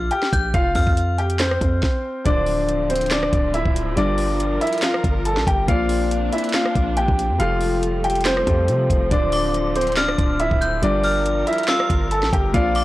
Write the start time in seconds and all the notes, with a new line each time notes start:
Already playing: A#1 F6
0.11 G4 G5, closed hi-hat
0.23 snare
0.33 A#1 G6, kick, closed hi-hat
0.54 F1 F4 F5, kick, closed hi-hat
0.75 F2 F6, kick, open hi-hat
0.87 kick
0.97 closed hi-hat
1.18 G4 G5, closed hi-hat
1.30 closed hi-hat
1.39 C4 C5, snare, clap, closed hi-hat
1.51 cross-stick
1.61 F2, kick, closed hi-hat
1.83 kick, snare
2.24 D1 D3 F3 C4 D4 C5 D5, kick, closed hi-hat
2.46 open hi-hat
2.69 closed hi-hat
2.90 C4 C5, closed hi-hat
2.96 closed hi-hat
3.01 closed hi-hat
3.06 closed hi-hat
3.11 D4 D5, snare, clap, closed hi-hat
3.23 cross-stick
3.33 D1, kick, closed hi-hat
3.54 E4 E5, closed hi-hat
3.66 D1, kick
3.76 closed hi-hat
3.96 G1 G3 D4 F4 A#4 D5, closed hi-hat
4.18 open hi-hat
4.40 closed hi-hat
4.61 E4 E5, closed hi-hat
4.67 closed hi-hat
4.73 closed hi-hat
4.78 closed hi-hat
4.82 F4 F5, snare, clap, closed hi-hat
4.94 cross-stick
5.04 G1, kick, closed hi-hat
5.25 A4 A5, closed hi-hat
5.37 A#1, snare
5.47 G1 G4 G5, kick, closed hi-hat
5.66 A#1 A#3 C4 D4 F4 C5 D5 F5, kick, closed hi-hat
5.89 open hi-hat
6.11 closed hi-hat
6.33 E4 E5, closed hi-hat
6.38 closed hi-hat
6.44 closed hi-hat
6.49 closed hi-hat
6.54 F4 F5, snare, clap, closed hi-hat
6.66 cross-stick
6.75 A#1, kick, closed hi-hat
6.97 G4 G5, closed hi-hat
7.08 A#1, kick
7.19 closed hi-hat
7.30 F2
7.38 F1 F3 G3 A3 F4 G4 A4 F5, closed hi-hat
7.61 open hi-hat
7.83 closed hi-hat
8.04 G4 G5, closed hi-hat
8.10 closed hi-hat
8.15 closed hi-hat
8.21 closed hi-hat
8.25 C4 C5, snare, clap, closed hi-hat
8.37 cross-stick
8.46 F2 F3 F4 G4 A4, kick, closed hi-hat
8.68 C3, closed hi-hat
8.90 F1, kick, closed hi-hat
9.10 D1 D3 F3 C4 D4 C5 D5, kick, closed hi-hat
9.32 D6, open hi-hat
9.54 closed hi-hat
9.75 C4 C5, closed hi-hat
9.81 closed hi-hat
9.87 closed hi-hat
9.92 closed hi-hat
9.96 D4 D5 F6, snare, clap, closed hi-hat
10.08 cross-stick
10.18 D1, kick, closed hi-hat
10.40 E4 E5, closed hi-hat
10.51 D1, kick
10.61 G6, closed hi-hat
10.81 G1 G3 D4 F4 A#4 D5, closed hi-hat
11.04 F6, open hi-hat
11.26 closed hi-hat
11.47 E4 E5, closed hi-hat
11.53 closed hi-hat
11.58 closed hi-hat
11.63 closed hi-hat
11.68 F4 F5 E6, snare, clap, closed hi-hat
11.80 cross-stick
11.90 G1, kick, closed hi-hat
12.11 A4 A5, closed hi-hat
12.23 A#1, snare
12.33 G1 G4 G5, kick, closed hi-hat
12.52 A#1 A#3 C4 D4 F4 C5 D5 F5, kick, closed hi-hat
12.75 D6, open hi-hat